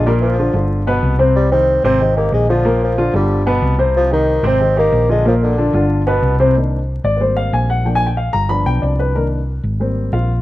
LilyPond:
<<
  \new Staff \with { instrumentName = "Grand piano" } { \time 4/4 \key c \minor \tempo 4 = 185 <bes, bes bes'>4 <d d' f'>8 <d d' f'>4 <b, b b'>4 <c c' c''>8~ | <c c' c''>8 <ees ees' g'>4 <c c' c''>8 <ees ees' g'>8 <ees ees' g'>4 <d d' f'>8 | <bes, bes bes'>4 <d d' f'>8 <d d' f'>4 <b, b b'>4 <c c' c''>8~ | <c c' c''>8 <ees ees' g'>4 <c c' c''>8 <ees ees' g'>8 <ees ees' g'>4 <d d' f'>8 |
<bes, bes bes'>4 <d d' f'>8 <d d' f'>4 <b, b b'>4 <c c' c''>8 | r4. d''8 <b' c''>8 f''8 aes''8 fis''8 | \tuplet 3/2 { g''8 aes''8 g''8 } f''8 bes''8 b''8 g''8 d''8 b'8 | bes'8 r2 r8 <f' f''>4 | }
  \new Staff \with { instrumentName = "Grand piano" } { \time 4/4 \key c \minor r1 | r1 | r1 | r1 |
r1 | <ees bes d'>8 r4. <g bes c'>2 | <f bes d'>8 r4. <f b d'>2 | <ees bes d'>8 r4. <g bes c'>4. r8 | }
  \new Staff \with { instrumentName = "Bassoon" } { \clef bass \time 4/4 \key c \minor g8 f4. r2 | g8 c'4 c'4 bes8 aes8 f8~ | f8 f4 g4 r4. | f8 ees4 c'4 bes4 aes8 |
f8 d4. r2 | r1 | r1 | r1 | }
  \new Staff \with { instrumentName = "Fingered electric bass" } { \clef bass \time 4/4 \key c \minor bes,,4. g,,4. c,4~ | c,4. aes,,4. bes,,4~ | bes,,4. g,,4. c,4~ | c,4. aes,,4. bes,,4~ |
bes,,4. g,,4. c,4~ | c,4. aes,,4. bes,,4~ | bes,,4. g,,4 b,,8 c,4~ | c,4. aes,,4. bes,,4 | }
>>